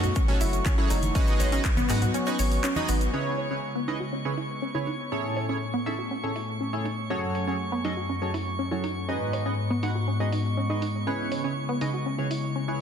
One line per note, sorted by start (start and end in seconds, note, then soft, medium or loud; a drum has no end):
0.00 0.10 F#2 loud
0.00 3.09 F#3 medium
0.00 1.11 A3 medium
0.00 1.13 F#4 medium
0.00 0.09 F#4 medium
0.00 3.12 C#6 medium
0.00 closed hi-hat medium
0.00 low conga medium
0.00 shaker soft
0.15 0.21 C#4 medium
0.15 kick loud
0.15 closed hi-hat medium
0.15 shaker soft
0.28 0.37 F#3 medium
0.28 0.33 C#4 medium
0.28 0.37 C#4 medium
0.28 0.37 F#4 medium
0.28 0.37 G#4 medium
0.28 0.37 A4 medium
0.28 0.37 C#5 medium
0.28 open hi-hat medium
0.28 low conga medium
0.41 0.60 F#1 medium
0.41 0.49 E4 medium
0.41 open hi-hat loud
0.41 shaker medium
0.53 closed hi-hat medium
0.53 shaker soft
0.65 0.71 C#4 medium
0.65 kick loud
0.65 clap loud
0.65 closed hi-hat medium
0.65 high conga medium
0.65 shaker soft
0.78 0.91 F#3 medium
0.78 0.91 C#4 medium
0.78 0.86 E4 medium
0.78 0.91 F#4 medium
0.78 0.91 G#4 medium
0.78 0.91 A4 medium
0.78 0.91 C#5 medium
0.90 1.09 F#1 medium
0.90 1.02 D#4 medium
0.90 open hi-hat medium
0.90 shaker medium
1.03 closed hi-hat medium
1.03 high conga medium
1.03 shaker soft
1.15 1.49 G#3 loud
1.15 3.11 B3 medium
1.15 1.20 C#4 medium
1.15 1.49 D#4 medium
1.15 1.49 F#4 medium
1.15 3.11 F#4 medium
1.15 1.49 G#4 loud
1.15 1.49 B4 medium
1.15 1.49 D#5 loud
1.15 kick loud
1.15 closed hi-hat medium
1.15 shaker medium
1.27 closed hi-hat soft
1.27 shaker soft
1.40 1.59 G#1 loud
1.40 1.48 C#5 medium
1.40 open hi-hat loud
1.40 high conga medium
1.40 high woodblock medium
1.40 shaker medium
1.52 1.61 G#3 medium
1.52 1.57 C#4 medium
1.52 1.61 D#4 medium
1.52 1.61 F#4 medium
1.52 1.61 G#4 medium
1.52 1.61 B4 medium
1.52 1.61 D#5 medium
1.52 closed hi-hat medium
1.52 shaker soft
1.64 kick loud
1.64 clap loud
1.64 closed hi-hat medium
1.64 shaker soft
1.76 1.87 G#1 medium
1.76 1.89 B3 loud
1.76 closed hi-hat soft
1.76 high conga medium
1.76 low conga medium
1.76 shaker soft
1.89 2.09 G#2 loud
1.89 1.98 G#3 medium
1.89 2.01 D#4 medium
1.89 1.98 D#4 medium
1.89 1.98 F#4 medium
1.89 1.98 G#4 medium
1.89 1.98 B4 medium
1.89 1.98 F#5 loud
1.89 clap medium
1.89 open hi-hat loud
1.89 shaker medium
2.02 2.07 F#4 medium
2.02 closed hi-hat medium
2.02 low conga medium
2.02 shaker soft
2.14 2.19 C#4 medium
2.14 closed hi-hat medium
2.14 shaker soft
2.27 2.35 G#3 medium
2.27 2.32 C#4 medium
2.27 2.35 D#4 medium
2.27 2.35 F#4 medium
2.27 2.35 G#4 medium
2.27 2.35 B4 medium
2.27 2.35 D#5 medium
2.27 high woodblock medium
2.27 shaker soft
2.39 2.58 G#1 medium
2.39 2.51 C#5 medium
2.39 open hi-hat loud
2.39 shaker medium
2.51 open hi-hat medium
2.51 shaker soft
2.64 2.72 C#4 medium
2.64 clap loud
2.64 closed hi-hat medium
2.64 shaker medium
2.76 2.90 G#3 medium
2.76 2.90 D#4 medium
2.76 2.85 D#4 loud
2.76 2.90 F#4 medium
2.76 2.90 G#4 medium
2.76 2.90 B4 medium
2.76 2.90 D#5 medium
2.76 high conga medium
2.76 shaker soft
2.89 3.08 G#1 medium
2.89 2.97 B3 medium
2.89 open hi-hat loud
2.89 high woodblock medium
2.89 shaker medium
3.01 closed hi-hat medium
3.01 shaker soft
3.13 3.48 C#3 medium
3.13 5.10 C#3 medium
3.13 5.10 G#3 medium
3.13 7.06 B3 medium
3.13 3.48 C#4 medium
3.13 3.19 C#4 medium
3.13 3.48 E4 medium
3.13 5.10 E4 medium
3.13 3.48 G#4 medium
3.13 3.48 B4 medium
3.13 3.48 C#5 loud
3.13 5.10 D#5 medium
3.13 12.81 C#6 medium
3.38 3.47 C#5 medium
3.38 open hi-hat medium
3.51 3.59 C#3 medium
3.51 3.56 C#4 medium
3.51 3.59 C#4 medium
3.51 3.59 E4 medium
3.51 3.59 G#4 medium
3.51 3.59 B4 medium
3.51 3.59 C#5 medium
3.75 3.87 B3 medium
3.88 3.96 C#3 medium
3.88 3.96 C#4 medium
3.88 4.00 D#4 medium
3.88 3.96 E4 medium
3.88 3.96 G#4 medium
3.88 3.96 B4 medium
3.88 3.96 D#5 loud
3.88 open hi-hat medium
4.00 4.05 F#4 medium
4.13 4.18 C#4 medium
4.25 4.33 C#3 medium
4.25 4.30 C#4 medium
4.25 4.33 C#4 medium
4.25 4.33 E4 medium
4.25 4.33 G#4 medium
4.25 4.33 B4 medium
4.25 4.33 C#5 medium
4.37 4.46 E4 medium
4.37 open hi-hat medium
4.62 4.67 C#4 medium
4.75 4.88 C#3 medium
4.75 4.88 C#4 medium
4.75 4.83 E4 medium
4.75 4.88 E4 medium
4.75 4.88 G#4 medium
4.75 4.88 B4 medium
4.75 4.88 C#5 medium
4.87 4.99 D#4 medium
4.87 open hi-hat medium
5.12 5.46 A2 medium
5.12 7.08 A2 medium
5.12 9.05 A3 medium
5.12 5.46 C#4 medium
5.12 5.17 C#4 medium
5.12 5.46 E4 medium
5.12 5.46 G#4 medium
5.12 5.46 A4 medium
5.12 5.46 C#5 loud
5.12 9.05 C#5 medium
5.12 7.08 G#5 medium
5.37 5.45 C#5 medium
5.37 open hi-hat loud
5.49 5.57 A2 medium
5.49 5.57 C#4 medium
5.49 5.54 C#4 medium
5.49 5.57 E4 medium
5.49 5.57 G#4 medium
5.49 5.57 A4 medium
5.49 5.57 C#5 medium
5.74 5.86 B3 loud
5.86 5.95 A2 medium
5.86 5.95 C#4 medium
5.86 5.98 D#4 medium
5.86 5.95 E4 medium
5.86 5.95 G#4 medium
5.86 5.95 A4 medium
5.86 5.95 E5 loud
5.86 open hi-hat medium
5.99 6.04 F#4 medium
6.11 6.16 C#4 medium
6.23 6.32 A2 medium
6.23 6.32 C#4 medium
6.23 6.28 C#4 medium
6.23 6.32 E4 medium
6.23 6.32 G#4 medium
6.23 6.32 A4 medium
6.23 6.32 C#5 medium
6.36 6.44 E4 medium
6.36 open hi-hat loud
6.61 6.66 C#4 medium
6.73 6.86 A2 medium
6.73 6.86 C#4 medium
6.73 6.81 E4 medium
6.73 6.86 E4 medium
6.73 6.86 G#4 medium
6.73 6.86 A4 medium
6.73 6.86 C#5 medium
6.85 6.97 D#4 medium
6.85 open hi-hat medium
7.10 9.07 F#2 medium
7.10 7.44 F#3 loud
7.10 9.07 F#3 medium
7.10 7.15 C#4 medium
7.10 7.44 C#4 medium
7.10 7.44 F#4 medium
7.10 7.44 G#4 medium
7.10 7.44 A4 medium
7.10 7.44 C#5 loud
7.10 9.07 G#5 medium
7.35 7.43 C#5 medium
7.35 open hi-hat loud
7.47 7.56 F#3 medium
7.47 7.52 C#4 medium
7.47 7.56 C#4 medium
7.47 7.56 F#4 medium
7.47 7.56 G#4 medium
7.47 7.56 A4 medium
7.47 7.56 C#5 medium
7.72 7.84 B3 loud
7.85 7.93 F#3 medium
7.85 7.93 C#4 medium
7.85 7.96 D#4 medium
7.85 7.93 F#4 medium
7.85 7.93 G#4 medium
7.85 7.93 A4 medium
7.85 7.93 D#5 loud
7.85 open hi-hat medium
7.97 8.02 F#4 medium
8.09 8.14 C#4 medium
8.22 8.30 F#3 medium
8.22 8.27 C#4 medium
8.22 8.30 C#4 medium
8.22 8.30 F#4 medium
8.22 8.30 G#4 medium
8.22 8.30 A4 medium
8.22 8.30 C#5 medium
8.34 8.43 E4 medium
8.34 open hi-hat loud
8.59 8.64 C#4 medium
8.71 8.85 F#3 medium
8.71 8.85 C#4 medium
8.71 8.80 E4 medium
8.71 8.85 F#4 medium
8.71 8.85 G#4 medium
8.71 8.85 A4 medium
8.71 8.85 C#5 medium
8.84 8.95 D#4 medium
8.84 open hi-hat medium
9.08 11.05 G#2 medium
9.08 12.81 G#3 medium
9.08 9.43 G#3 medium
9.08 12.81 B3 medium
9.08 9.14 C#4 medium
9.08 9.43 D#4 medium
9.08 11.05 F#4 medium
9.08 9.43 F#4 medium
9.08 9.43 G#4 medium
9.08 9.43 B4 medium
9.08 12.81 D#5 medium
9.08 9.43 D#5 loud
9.33 9.42 C#5 medium
9.33 open hi-hat loud
9.46 9.54 G#3 medium
9.46 9.51 C#4 medium
9.46 9.54 D#4 medium
9.46 9.54 F#4 medium
9.46 9.54 G#4 medium
9.46 9.54 B4 medium
9.46 9.54 D#5 medium
9.70 9.82 B3 medium
9.83 9.91 G#3 medium
9.83 9.91 D#4 medium
9.83 9.95 D#4 medium
9.83 9.91 F#4 medium
9.83 9.91 G#4 medium
9.83 9.91 B4 medium
9.83 9.91 F#5 loud
9.83 open hi-hat medium
9.95 10.00 F#4 medium
10.08 10.13 C#4 medium
10.20 10.28 G#3 medium
10.20 10.25 C#4 medium
10.20 10.28 D#4 medium
10.20 10.28 F#4 medium
10.20 10.28 G#4 medium
10.20 10.28 B4 medium
10.20 10.28 D#5 medium
10.32 10.41 D#4 medium
10.32 open hi-hat medium
10.57 10.62 C#4 medium
10.70 10.83 G#3 medium
10.70 10.78 D#4 medium
10.70 10.83 D#4 medium
10.70 10.83 F#4 medium
10.70 10.83 G#4 medium
10.70 10.83 B4 medium
10.70 10.83 D#5 medium
10.82 10.94 D#4 medium
10.82 open hi-hat medium
11.07 12.81 C#3 medium
11.07 11.41 C#3 medium
11.07 11.12 C#4 medium
11.07 11.41 C#4 medium
11.07 12.81 E4 medium
11.07 11.41 E4 medium
11.07 11.41 G#4 medium
11.07 11.41 B4 medium
11.07 11.41 C#5 loud
11.32 11.40 C#5 medium
11.32 open hi-hat medium
11.44 11.52 C#3 medium
11.44 11.49 C#4 medium
11.44 11.52 C#4 medium
11.44 11.52 E4 medium
11.44 11.52 G#4 medium
11.44 11.52 B4 medium
11.44 11.52 C#5 medium
11.69 11.81 B3 loud
11.81 11.90 C#3 medium
11.81 11.90 C#4 medium
11.81 11.93 D#4 medium
11.81 11.90 E4 medium
11.81 11.90 G#4 medium
11.81 11.90 B4 medium
11.81 11.90 D#5 loud
11.81 open hi-hat medium
11.94 11.99 F#4 medium
12.06 12.11 C#4 medium
12.18 12.27 C#3 medium
12.18 12.23 C#4 medium
12.18 12.27 C#4 medium
12.18 12.27 E4 medium
12.18 12.27 G#4 medium
12.18 12.27 B4 medium
12.18 12.27 C#5 medium
12.31 12.39 E4 medium
12.31 open hi-hat loud
12.56 12.61 C#4 medium
12.68 12.81 C#3 medium
12.68 12.81 C#4 medium
12.68 12.76 E4 medium
12.68 12.81 E4 medium
12.68 12.81 G#4 medium
12.68 12.81 B4 medium
12.68 12.81 C#5 medium